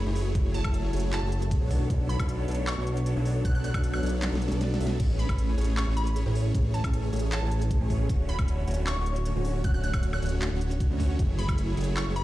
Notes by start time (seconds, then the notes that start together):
Already playing: F#3 A3 E4 F#4
0.06 F#1 F#3 A3 E4 G#4 C#5
0.16 open hi-hat
0.35 F#1 F#3 A3 E4 G#4 C#5, kick, closed hi-hat
0.54 A5, closed hi-hat
0.64 F#1 F#3 A3 E4 G#4 C#5, kick, closed hi-hat, high woodblock
0.74 closed hi-hat
0.93 F#1 F#3 A3 E4 G#4 C#5, closed hi-hat
0.97 closed hi-hat
1.00 closed hi-hat
1.12 A5, clap, closed hi-hat
1.23 F#1 F#3 A3 E4 G#4 C#5
1.32 closed hi-hat
1.42 closed hi-hat
1.51 kick, closed hi-hat
1.61 B1 F#3 B3 D4 A4 C#5
1.71 B3 D4 C#5, kick, open hi-hat
1.90 B1 F#3 B3 D4 A4 C#5, kick, closed hi-hat
2.09 B5, closed hi-hat
2.19 B1 F#3 B3 D4 A4 C#5, kick, closed hi-hat, high woodblock
2.29 closed hi-hat
2.48 B1 F#3 B3 D4 A4 C#5, closed hi-hat
2.51 closed hi-hat
2.55 closed hi-hat
2.67 C#6, clap, closed hi-hat, high woodblock
2.77 B1 F#3 B3 D4 A4 C#5
2.87 closed hi-hat
2.97 closed hi-hat
3.06 closed hi-hat
3.16 B1 F#3 B3 D4 A4 C#5
3.26 open hi-hat
3.45 B1 F#3 B3 D4 A4 C#5 F#6, kick, closed hi-hat
3.55 F#6
3.64 F#6, closed hi-hat
3.74 B1 F#3 B3 D4 A4 C#5 F#6, kick, closed hi-hat, high woodblock
3.84 closed hi-hat
3.93 F#6, high woodblock
4.03 B1 F#3 B3 D4 A4 C#5, closed hi-hat
4.06 closed hi-hat
4.09 closed hi-hat
4.22 snare, clap, closed hi-hat
4.32 B1 F#3 B3 D4 A4 C#5, snare
4.42 closed hi-hat
4.48 B1 F#3 B3 D4 A4 D5, snare, closed hi-hat
4.61 snare, closed hi-hat
4.74 snare
4.80 B1 F#3 B3 D4 A4 E5, open hi-hat
4.87 snare
4.99 A1 E3 A3 C#4 E4 G#4 C#5, kick, closed hi-hat, crash
5.19 B5, closed hi-hat
5.29 A1 E3 A3 C#4 G#4 C#5, kick, closed hi-hat, high woodblock
5.38 closed hi-hat
5.57 A1 E3 A3 C#4 G#4 C#5, closed hi-hat
5.61 closed hi-hat
5.64 closed hi-hat
5.77 C#6, clap, closed hi-hat, high woodblock
5.87 A1 E3 A3 C#4 G#4 C#5
5.97 B5, closed hi-hat
6.07 closed hi-hat
6.16 closed hi-hat
6.26 A1 E3 A3 C#4 G#4 C#5
6.35 open hi-hat
6.54 A1 E3 A3 C#4 G#4 C#5, kick, closed hi-hat
6.74 A5, closed hi-hat
6.84 A1 E3 A3 C#4 G#4 C#5, kick, closed hi-hat, high woodblock
6.93 closed hi-hat
7.12 A1 E3 A3 C#4 G#4 C#5, closed hi-hat
7.16 closed hi-hat
7.19 closed hi-hat
7.32 A5, clap, closed hi-hat
7.42 A1 E3 A3 C#4 G#4 C#5
7.51 closed hi-hat
7.62 closed hi-hat
7.71 kick, closed hi-hat
7.81 A1 E3 A3 C#4 G#4 C#5
7.90 kick, open hi-hat
8.09 D1 D3 A3 C#4 F#4 C#5, kick, closed hi-hat
8.29 B5, closed hi-hat
8.39 D1 D3 A3 C#4 F#4 C#5, kick, closed hi-hat, high woodblock
8.48 closed hi-hat
8.67 D1 D3 A3 C#4 F#4 C#5, closed hi-hat
8.71 closed hi-hat
8.74 closed hi-hat
8.87 C#6, clap, closed hi-hat, high woodblock
8.97 D1 D3 A3 C#4 F#4 C#5
9.06 closed hi-hat
9.16 closed hi-hat
9.25 closed hi-hat
9.36 D1 D3 A3 C#4 F#4 C#5
9.45 open hi-hat
9.64 D1 D3 A3 C#4 F#4 C#5 F#6, kick, closed hi-hat
9.74 F#6
9.84 F#6, closed hi-hat
9.94 D1 D3 A3 C#4 F#4 C#5 F#6, kick, closed hi-hat, high woodblock
10.03 closed hi-hat
10.13 F#6, high woodblock
10.22 D1 D3 A3 C#4 F#4 C#5, closed hi-hat
10.26 closed hi-hat
10.29 closed hi-hat
10.42 clap, closed hi-hat
10.52 D1 D3 A3 C#4 F#4 C#5
10.61 closed hi-hat
10.71 closed hi-hat
10.80 kick, closed hi-hat
10.90 D2 D3 A3 C#4 F#4 C#5
11.00 kick, open hi-hat
11.19 F#1 F#3 A3 E4 F#4 G#4 C#5, kick, closed hi-hat
11.39 B5, closed hi-hat
11.48 F#1 F#3 A3 E4 G#4 C#5, kick, closed hi-hat, high woodblock
11.58 closed hi-hat
11.77 F#1 F#3 A3 E4 G#4 C#5, closed hi-hat
11.81 closed hi-hat
11.84 closed hi-hat
11.96 C#6, clap, closed hi-hat, high woodblock
12.07 F#1 F#3 A3 E4 G#4 C#5
12.16 B5, closed hi-hat